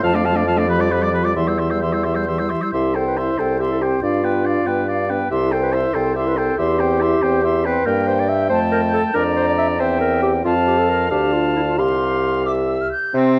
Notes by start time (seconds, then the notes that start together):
0.02 F2 F3 F4 F5 A5
0.12 A3 D4 D5 F5
0.23 F3 F4 F5 A5
0.35 A3 D4 D5 F5
0.46 F3 F4 F5 A5
0.57 A3 D4 D5 F5
0.67 F3 G4 B4 B5
0.79 G3 F4 D5 D6
0.90 F3 G4 B4 B5
1.01 G3 F4 D5 D6
1.12 F3 G4 B4 B5
1.23 G3 F4 D5 D6
1.34 E2 E3 G4 E5 C6
1.46 G3 E4 C5 E6
1.58 E3 G4 E5 C6
1.70 G3 E4 C5 E6
1.81 E3 G4 E5 C6
1.92 G3 E4 C5 E6
2.03 E3 G4 E5 C6
2.14 G3 E4 C5 E6
2.26 E3 G4 E5 C6
2.38 G3 E4 C5 E6
2.49 E3 G4 E5 C6
2.61 G3 E4 C5 E6
2.72 C2 E4 G4 E5 C6
2.95 C4 A4 C5 G5
3.07 B4
3.17 E4 C5 E5 C6
3.38 C2 C4 A4 C5 G5
3.60 E4 G4 E5 C6
3.71 A4
3.81 C4 G4 C5 G5
4.02 G2 D4 F4 D5 F5
4.24 B3 B4 G5
4.45 D4 D5 F5
4.66 G2 B3 B4 G5
4.88 D4 D5 F5
5.09 B3 B4 G5
5.30 C2 E4 G4 E5 C6
5.51 C4 A4 C5 G5
5.63 B4
5.72 E4 C5 E5 C6
5.94 C2 C4 A4 C5 G5
6.15 E4 G4 E5 C6
6.27 B4
6.37 C4 A4 C5 G5
6.58 E2 E4 G4 E5 C6
6.79 C4 C5 G5
7.00 E4 E5 C6
7.22 E2 C4 C5 G5
7.43 E4 E5 C6
7.65 C4 B4 C5 G5
7.85 G2 A#3 A#4 G5
8.07 C5
8.20 D5
8.29 E5
8.49 F2 A3 C5 A5
8.71 A#4
8.93 A4
9.14 F2 D4 A#4 D5 A#5
9.36 C5
9.47 D5
9.58 E5
9.79 E2 C4 C5 E5 G5
10.00 A#4
10.22 G4
10.44 F2 C4 F4 F5 A5
10.66 G4
10.78 A4
10.89 A#4
11.10 D2 D4 G4 F5 A5
11.33 F4
11.56 E4
11.68 F4
11.78 C2 G4 F5 C6
12.45 G4 E5 D6
12.68 E6
12.81 F6
12.91 G6
13.14 C3 C4